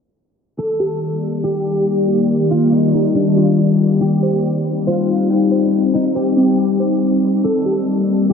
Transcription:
0.58 3.98 D#3 medium
0.58 3.98 G3 medium
0.58 3.98 A#3 medium
0.58 3.98 G4 medium
0.58 0.99 A4 medium
0.58 3.98 D5 medium
0.58 1.86 D6 loud
0.80 1.43 G4 medium
1.44 2.07 G4 medium
1.44 1.84 G4 medium
1.87 2.50 D6 medium
2.08 2.72 G4 medium
2.51 2.71 F4 medium
2.51 3.80 D6 medium
2.72 3.13 D#4 medium
2.72 3.35 G4 medium
2.95 4.01 D#3 medium
3.15 3.36 D4 medium
3.36 3.57 F4 medium
3.36 4.01 G4 medium
4.01 8.33 G3 medium
4.01 7.41 C4 medium
4.01 7.41 D#4 medium
4.01 4.42 G4 loud
4.01 5.29 G5 loud
4.23 4.86 C5 medium
4.87 5.28 F4 medium
4.87 5.50 C5 loud
5.30 5.92 G5 medium
5.51 6.14 C5 medium
5.94 6.15 D#4 medium
5.94 7.22 G5 loud
6.15 6.97 G4 medium
6.15 6.79 C5 medium
6.37 7.44 C4 medium
6.80 7.44 C5 medium
7.44 8.33 D#3 medium
7.44 8.33 A#3 medium
7.44 8.33 G4 medium
7.44 7.85 A4 loud
7.44 8.33 D5 medium
7.44 8.33 D6 loud
7.66 8.29 G4 medium
8.30 8.33 G4 loud
8.30 8.33 G4 medium

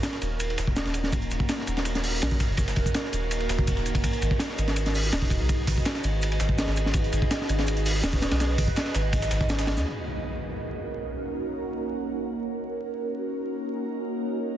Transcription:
0.03 snare loud
0.03 ride medium
0.03 shaker medium
0.12 snare soft
0.22 0.57 D#1 medium
0.22 ride medium
0.22 shaker medium
0.40 ride medium
0.40 shaker medium
0.50 ride soft
0.58 0.84 D#1 medium
0.58 snare loud
0.58 ride medium
0.58 shaker medium
0.67 kick medium
0.76 snare loud
0.76 ride medium
0.76 shaker medium
0.86 1.29 D#1 loud
0.86 snare soft
0.94 ride medium
0.94 shaker medium
1.04 snare soft
1.13 kick loud
1.13 ride medium
1.13 shaker medium
1.22 closed hi-hat soft
1.31 1.40 D#1 loud
1.31 ride medium
1.31 shaker medium
1.40 kick medium
1.49 snare loud
1.49 ride medium
1.49 shaker medium
1.59 snare soft
1.67 2.21 D#1 medium
1.67 ride medium
1.67 shaker medium
1.77 snare medium
1.77 snare soft
1.85 ride medium
1.85 shaker medium
1.95 snare medium
1.95 closed hi-hat soft
2.03 open hi-hat medium
2.03 shaker medium
2.22 2.48 A#1 loud
2.22 snare loud
2.22 ride medium
2.22 shaker medium
2.31 kick medium
2.40 kick medium
2.40 snare loud
2.40 ride medium
2.40 shaker medium
2.49 2.75 F#1 loud
2.57 kick loud
2.57 ride medium
2.57 shaker medium
2.68 snare loud
2.68 shaker medium
2.76 2.85 D#1 loud
2.76 kick medium
2.76 ride medium
2.86 kick medium
2.86 shaker medium
2.94 snare loud
2.94 ride medium
2.94 shaker medium
3.04 snare soft
3.13 3.48 D#1 medium
3.13 ride medium
3.13 shaker medium
3.31 ride medium
3.31 shaker medium
3.40 ride soft
3.49 3.75 D#1 loud
3.49 snare loud
3.49 ride medium
3.49 shaker medium
3.59 kick loud
3.67 kick loud
3.67 ride medium
3.67 shaker medium
3.77 4.02 D#1 medium
3.77 snare medium
3.86 ride medium
3.86 shaker medium
3.95 kick medium
3.95 ride medium
4.04 kick loud
4.04 ride loud
4.04 shaker medium
4.13 closed hi-hat soft
4.22 4.31 G#1 loud
4.22 ride medium
4.22 shaker medium
4.31 kick medium
4.39 snare loud
4.39 ride medium
4.39 shaker medium
4.49 snare soft
4.58 5.11 G#1 medium
4.58 ride medium
4.58 shaker medium
4.68 snare medium
4.68 snare soft
4.76 ride medium
4.76 shaker medium
4.86 snare soft
4.86 closed hi-hat soft
4.95 open hi-hat medium
4.95 shaker medium
5.13 5.39 D#1 loud
5.13 snare loud
5.13 ride medium
5.13 shaker medium
5.22 kick medium
5.30 kick loud
5.30 ride medium
5.30 shaker medium
5.41 5.66 B1 loud
5.49 kick loud
5.49 ride medium
5.49 shaker medium
5.67 5.76 G#1 loud
5.67 kick medium
5.67 open hi-hat medium
5.67 ride medium
5.78 kick medium
5.85 snare loud
5.85 ride medium
5.85 shaker medium
5.95 snare soft
5.95 snare medium
6.04 6.39 G#1 medium
6.04 ride medium
6.04 shaker medium
6.22 ride medium
6.22 shaker medium
6.32 ride soft
6.40 6.66 G#1 medium
6.40 snare loud
6.40 ride medium
6.40 shaker medium
6.49 kick medium
6.58 snare loud
6.58 ride medium
6.58 shaker medium
6.67 7.11 G#1 medium
6.67 snare soft
6.67 snare medium
6.76 ride medium
6.76 shaker medium
6.86 snare medium
6.94 kick loud
6.94 ride loud
6.94 shaker medium
7.04 closed hi-hat soft
7.12 7.21 G#1 loud
7.12 ride medium
7.12 shaker medium
7.22 kick medium
7.31 snare loud
7.31 ride medium
7.31 shaker medium
7.41 snare soft
7.49 8.02 G#1 medium
7.49 ride medium
7.49 shaker medium
7.59 snare medium
7.59 snare soft
7.67 ride medium
7.67 shaker medium
7.77 closed hi-hat soft
7.85 open hi-hat medium
7.85 shaker medium
8.03 8.30 D#1 loud
8.03 snare loud
8.03 ride medium
8.03 shaker medium
8.13 kick loud
8.22 snare loud
8.22 ride medium
8.22 shaker medium
8.31 8.57 B1 loud
8.31 snare loud
8.31 ride medium
8.40 snare loud
8.40 ride medium
8.40 shaker medium
8.58 8.67 G#1 loud
8.58 kick loud
8.58 open hi-hat medium
8.58 ride medium
8.68 kick medium
8.76 snare loud
8.76 ride medium
8.76 shaker medium
8.86 snare soft
8.86 snare medium
8.95 9.30 G#1 medium
8.95 snare loud
8.95 ride medium
8.95 shaker medium
9.13 kick loud
9.13 ride medium
9.13 shaker medium
9.22 snare loud
9.22 shaker medium
9.31 9.78 G#1 medium
9.31 snare loud
9.31 ride medium
9.31 shaker medium
9.41 kick medium
9.41 snare soft
9.49 snare loud
9.49 ride medium
9.49 shaker medium
9.59 snare loud
9.59 snare soft
9.59 shaker medium
9.67 snare loud
9.67 snare soft
9.67 ride medium
9.77 9.85 D#2 medium
9.77 snare medium
9.77 shaker medium
9.85 12.74 A#3 medium
9.85 12.74 C#4 medium
9.85 12.74 D#4 medium
9.85 12.74 F#4 medium
9.85 12.74 A#4 loud
9.85 impact medium
12.76 14.57 A#3 medium
12.76 14.57 C#4 medium
12.76 14.57 D#4 medium
12.76 14.57 F#4 medium
12.76 14.57 A#4 medium

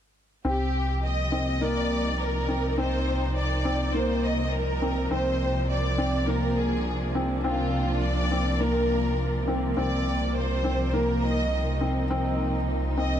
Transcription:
0.45 5.08 C2 medium
0.45 13.20 C3 medium
0.45 0.89 C4 medium
0.45 0.99 G4 medium
0.90 13.20 F3 medium
1.04 13.20 A#3 medium
1.04 1.62 D#5 medium
1.32 1.54 C4 medium
1.61 2.05 A#3 medium
1.61 2.20 D5 medium
1.80 5.11 D#4 medium
2.20 2.78 A#4 medium
2.49 2.71 C4 medium
2.78 3.22 C4 medium
2.78 3.32 C5 medium
3.36 3.94 D5 medium
3.65 3.87 C4 medium
3.94 4.38 A#3 medium
3.94 4.23 C5 medium
4.23 4.52 D#5 medium
4.52 5.11 A#4 medium
4.82 5.04 C4 medium
5.11 9.74 C2 medium
5.11 5.55 C4 medium
5.11 5.65 C5 medium
5.69 6.27 D5 medium
5.98 6.20 C4 medium
6.28 6.71 A#3 medium
6.28 6.57 A#4 medium
6.57 7.15 G#4 medium
6.62 9.77 D4 medium
7.15 7.37 C4 medium
7.44 7.88 C4 medium
7.44 7.98 F4 medium
8.01 8.60 D5 medium
8.31 8.53 C4 medium
8.60 9.04 A#3 medium
8.60 9.47 A#4 medium
9.48 9.70 C4 medium
9.77 13.20 C2 medium
9.77 10.21 C4 medium
9.77 10.31 D5 medium
10.35 10.93 C5 medium
10.64 10.86 C4 medium
10.94 11.38 A#3 medium
10.94 11.23 A#4 medium
11.20 13.20 D#4 medium
11.20 11.81 D#5 medium
11.81 12.03 C4 medium
12.11 12.54 C4 medium
12.98 13.19 C4 medium
12.98 13.20 D#5 medium

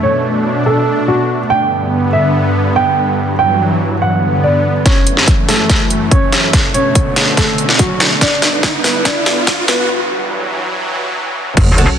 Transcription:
0.00 1.48 B2 medium
0.00 1.47 A3 medium
0.00 1.48 D4 medium
0.00 0.58 C#5 medium
0.66 0.95 A4 medium
1.08 1.37 F#4 medium
1.50 4.82 G2 medium
1.50 3.16 D3 medium
1.50 3.16 B3 medium
1.50 2.05 G5 medium
2.13 2.68 E5 medium
2.76 3.30 G5 medium
3.18 4.01 E3 medium
3.18 4.01 F#3 medium
3.39 3.93 G5 medium
4.02 4.85 D3 medium
4.02 4.85 B3 medium
4.02 4.31 F#5 medium
4.44 4.73 D5 medium
4.86 6.52 F#2 medium
4.86 6.52 E3 medium
4.86 8.18 A3 medium
4.86 5.40 C#4 medium
4.86 5.40 C#5 medium
4.86 kick medium
4.86 snare soft
4.86 closed hi-hat medium
4.86 riser medium
5.07 closed hi-hat medium
5.17 snare soft
5.28 kick medium
5.28 closed hi-hat medium
5.49 6.03 A3 medium
5.49 6.03 A4 medium
5.49 snare soft
5.49 open hi-hat medium
5.70 kick medium
5.70 snare medium
5.70 closed hi-hat medium
5.90 closed hi-hat medium
6.11 6.66 C#4 medium
6.11 6.66 C#5 medium
6.11 kick medium
6.11 closed hi-hat medium
6.32 snare medium
6.32 closed hi-hat medium
6.53 8.20 B2 medium
6.53 8.20 D3 medium
6.53 kick medium
6.53 snare medium
6.53 closed hi-hat medium
6.74 7.29 C#4 medium
6.74 7.29 C#5 medium
6.74 closed hi-hat medium
6.95 kick medium
6.95 closed hi-hat medium
7.16 snare medium
7.16 open hi-hat medium
7.37 7.67 A3 medium
7.37 7.67 A4 medium
7.37 kick medium
7.37 snare medium
7.37 closed hi-hat medium
7.58 closed hi-hat medium
7.69 snare medium
7.79 8.09 F#3 medium
7.79 8.09 F#4 medium
7.79 kick medium
7.79 closed hi-hat medium
8.00 snare medium
8.00 closed hi-hat medium
8.21 11.54 G2 medium
8.21 9.88 D3 medium
8.21 9.88 B3 medium
8.21 8.76 D4 medium
8.21 8.76 D5 medium
8.21 kick loud
8.21 snare medium
8.21 closed hi-hat medium
8.42 snare medium
8.42 closed hi-hat medium
8.63 kick medium
8.63 snare medium
8.63 closed hi-hat medium
8.84 9.04 B3 medium
8.84 9.04 B4 medium
8.84 snare medium
8.84 open hi-hat medium
9.05 9.60 D4 medium
9.05 9.60 D5 medium
9.05 kick loud
9.05 snare medium
9.05 closed hi-hat medium
9.26 snare medium
9.26 closed hi-hat medium
9.47 kick loud
9.47 snare medium
9.47 closed hi-hat medium
9.68 9.88 B3 medium
9.68 9.87 B4 medium
9.68 snare medium
9.68 closed hi-hat medium
9.89 11.55 E3 medium
9.89 11.55 F#3 medium
11.57 11.87 F#1 loud
11.57 11.99 F#3 medium
11.57 11.99 C#4 medium
11.57 11.99 A4 medium
11.57 kick loud
11.57 closed hi-hat medium
11.57 crash loud
11.57 sub drop medium
11.78 11.89 C#4 medium
11.78 11.89 F#4 medium
11.78 11.89 A4 loud
11.78 closed hi-hat medium

